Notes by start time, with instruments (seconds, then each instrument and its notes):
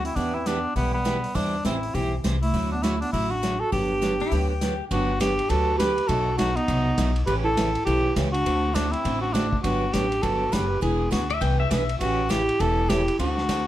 Already playing: upright bass D2
0.04 clarinet C4, cor anglais E4, open hi-hat
0.15 upright bass E2, steel-string acoustic guitar E3 B3 E4 G4, clarinet B3, cor anglais D4, kick, open hi-hat
0.34 clarinet C4, cor anglais E4
0.45 steel-string acoustic guitar E3 B3 E4 G4, clarinet B3, cor anglais D4, snare, closed hi-hat
0.75 upright bass B1, steel-string acoustic guitar E3 B3 E4 G4, clarinet G3, cor anglais B3, kick, open hi-hat
0.93 clarinet G3, cor anglais B3
1.04 steel-string acoustic guitar E3 B3 E4 G4, snare, closed hi-hat
1.24 open hi-hat
1.35 upright bass E2, steel-string acoustic guitar E3 G3 C4 E4 C5, clarinet G3, cor anglais D4, kick, open hi-hat
1.64 upright bass A1, steel-string acoustic guitar E3 G3 C4 E4 C5, clarinet C4, cor anglais E4, snare, closed hi-hat
1.83 open hi-hat
1.94 upright bass B1, steel-string acoustic guitar E3 G3 C4 E4 C5, clarinet E4, cor anglais G4, kick, open hi-hat
2.24 upright bass C2, steel-string acoustic guitar E3 G3 C4 E4 C5, snare, closed hi-hat
2.42 clarinet A3, cor anglais E4, open hi-hat
2.54 upright bass D2, steel-string acoustic guitar D3 F#3 A3 D4 F#4, kick, open hi-hat
2.72 clarinet B3, cor anglais D4
2.82 steel-string acoustic guitar D3 F#3 A3 D4 F#4, clarinet A3, cor anglais E4, snare, closed hi-hat
3.01 clarinet B3, cor anglais D4, open hi-hat
3.12 upright bass A1, steel-string acoustic guitar D3 F#3 A3 D4 F#4, clarinet A3, cor anglais E4, kick, open hi-hat
3.31 clarinet D4, cor anglais F#4
3.42 steel-string acoustic guitar D3 F#3 A3 D4 F#4, snare, closed hi-hat
3.60 clarinet F#4, cor anglais A4
3.72 upright bass G1, steel-string acoustic guitar D3 F#3 B3 D4 G4, clarinet D4, cor anglais G4, kick, open hi-hat
4.02 steel-string acoustic guitar D3 F#3 B3 D4 G4, snare, closed hi-hat
4.20 pedal steel guitar E4, open hi-hat
4.31 upright bass D2, steel-string acoustic guitar D3 F#3 B3 D4 G4, pedal steel guitar G4, kick, open hi-hat
4.50 pedal steel guitar G4
4.61 steel-string acoustic guitar D3 F#3 B3 D4 G4, snare, closed hi-hat
4.90 upright bass G1, steel-string acoustic guitar D3 F#3 B3 D4 G4, clarinet D4, cor anglais F#4, kick, ride
5.20 steel-string acoustic guitar D3 F#3 B3 D4 G4, clarinet D4, cor anglais G4, kick, snare, hi-hat pedal, ride
5.39 ride
5.49 upright bass D2, steel-string acoustic guitar D3 F#3 B3 D4 G4, clarinet F#4, cor anglais A4, kick, ride
5.78 steel-string acoustic guitar D3 F#3 B3 D4 G4, clarinet G4, cor anglais B4, kick, snare, hi-hat pedal, ride
5.98 ride
6.07 upright bass B1, steel-string acoustic guitar B2 F#3 A3 D#4 F#4, clarinet F#4, cor anglais A4, kick, ride
6.38 steel-string acoustic guitar B2 F#3 A3 D#4 F#4, clarinet D#4, cor anglais F#4, kick, snare, hi-hat pedal, ride
6.55 clarinet B3, cor anglais D#4, ride
6.68 upright bass C2, steel-string acoustic guitar B2 F#3 A3 D#4 F#4, kick, ride
6.98 upright bass B1, steel-string acoustic guitar B2 F#3 A3 D#4 F#4, kick, snare, hi-hat pedal, ride
7.16 ride
7.26 upright bass A1, steel-string acoustic guitar C#3 E3 A3 C#4 G4, clarinet G4, cor anglais B4, kick, ride
7.44 clarinet E4, cor anglais A4
7.57 steel-string acoustic guitar C#3 E3 A3 C#4 G4, kick, snare, hi-hat pedal, ride
7.75 ride
7.85 upright bass B1, steel-string acoustic guitar C#3 E3 A3 C#4 G4, clarinet E4, cor anglais G4, kick, ride
8.16 upright bass C#2, steel-string acoustic guitar C#3 E3 A3 C#4 G4, kick, snare, hi-hat pedal, ride
8.32 clarinet D4, cor anglais F#4, ride
8.46 upright bass D2, steel-string acoustic guitar D3 A3 C4 F#4 A4, kick, ride
8.73 steel-string acoustic guitar D3 A3 C4 F#4 A4, clarinet A3, cor anglais D4, kick, snare, hi-hat pedal, ride
8.91 clarinet C4, cor anglais E4, ride
9.05 upright bass A1, steel-string acoustic guitar D3 A3 C4 F#4 A4, kick, ride
9.21 clarinet D4, cor anglais F#4
9.33 steel-string acoustic guitar D3 A3 C4 F#4 A4, clarinet A3, cor anglais D4, kick, snare, hi-hat pedal, ride
9.53 kick
9.63 upright bass G1, steel-string acoustic guitar D3 F#3 B3 D4 G4, clarinet D4, cor anglais F#4, kick, ride
9.92 upright bass A1, steel-string acoustic guitar D3 F#3 B3 D4 G4, clarinet D4, cor anglais G4, kick, snare, hi-hat pedal, ride
10.12 ride
10.22 upright bass G1, steel-string acoustic guitar D3 F#3 B3 D4 G4, clarinet F#4, cor anglais A4, kick, ride
10.52 upright bass F#1, steel-string acoustic guitar D3 F#3 B3 D4 G4, clarinet G4, cor anglais B4, kick, snare, hi-hat pedal, ride
10.81 upright bass E1, steel-string acoustic guitar E3 B3 D4 G#4, clarinet E4, cor anglais G#4, kick, ride
11.11 upright bass D2, steel-string acoustic guitar E3 B3 D4 G#4, clarinet D4, cor anglais F#4, kick, snare, hi-hat pedal, ride
11.30 pedal steel guitar E5, ride
11.41 upright bass C2, steel-string acoustic guitar E3 B3 D4 G#4, pedal steel guitar G5, kick, ride
11.60 pedal steel guitar E5
11.71 upright bass B1, steel-string acoustic guitar E3 B3 D4 G#4, pedal steel guitar E5, kick, snare, hi-hat pedal, ride
11.89 ride
12.00 upright bass A1, steel-string acoustic guitar C#3 E3 A3 C#4 G4, clarinet C#4, cor anglais F#4, kick, ride
12.29 steel-string acoustic guitar C#3 E3 A3 C#4 G4, clarinet E4, cor anglais G4, kick, snare, hi-hat pedal, ride
12.49 ride
12.60 upright bass E1, steel-string acoustic guitar C#3 E3 A3 C#4 G4, clarinet E4, cor anglais A4, kick, ride
12.89 steel-string acoustic guitar C#3 E3 A3 C#4 G4, clarinet E4, cor anglais G4, kick, snare, hi-hat pedal, ride
13.08 ride
13.19 upright bass D2, steel-string acoustic guitar D3 A3 C4 F#4 A4, clarinet D4, cor anglais F#4, kick, ride
13.37 snare
13.49 steel-string acoustic guitar D3 A3 C4 F#4 A4, kick, snare, hi-hat pedal, ride